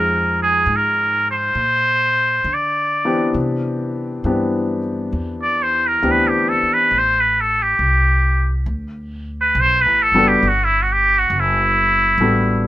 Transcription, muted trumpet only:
0.00 0.38 A#4 medium
0.42 0.78 G#4 medium
0.76 1.30 A#4 medium
1.31 2.55 C5 medium
2.54 3.39 D5 medium
5.43 5.64 D5 medium
5.62 5.89 C5 medium
5.87 6.13 A#4 medium
6.11 6.30 B4 medium
6.29 6.50 G4 medium
6.49 6.75 A4 medium
6.74 7.00 B4 medium
6.98 7.22 C5 medium
7.20 7.42 B4 medium
7.41 7.64 A4 medium
7.62 8.52 G4 medium
9.41 9.62 B4 medium
9.60 9.83 C5 medium
9.81 10.04 B4 medium
10.02 10.29 A4 medium
10.28 10.50 G4 medium
10.48 10.66 F#4 medium
10.64 10.84 E4 medium
10.82 10.94 F#4 medium
10.92 11.20 G4 loud
11.19 11.41 F#4 medium
11.40 12.67 E4 medium

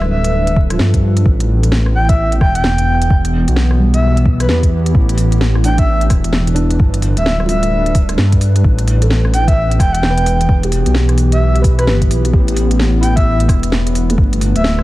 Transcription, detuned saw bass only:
0.00 0.79 D1 medium
0.80 1.25 G2 medium
1.26 2.40 A1 loud
2.41 3.09 E1 loud
3.10 3.46 E1 loud
3.48 4.48 B1 medium
4.49 4.94 E2 medium
4.95 6.09 A1 loud
6.10 6.79 E1 loud
6.80 7.15 G1 medium
7.17 8.17 D1 medium
8.19 8.64 G2 medium
8.64 9.79 A1 loud
9.80 10.48 E1 loud
10.49 10.85 E1 loud
10.86 11.89 B1 medium
11.87 12.12 G1 medium
12.11 12.32 B1 medium
12.33 13.48 A1 loud
13.49 14.17 E1 loud
14.18 14.54 G1 loud
14.56 14.83 D1 medium

